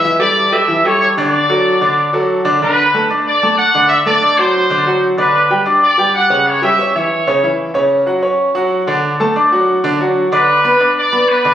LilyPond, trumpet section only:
\new Staff \with { instrumentName = "Trumpet section" } { \time 4/4 \key d \major \tempo 4 = 187 e''8 d''4 e''4 cis''8 cis''8 d''8~ | d''2. r4 | b'4. r8 d''4 fis''4 | e''8 d''4 c''2 r8 |
b'4. r8 d''4 fis''4 | cis''8 e''4 cis''2 r8 | r1 | r1 |
b'2 d''4 b'4 | }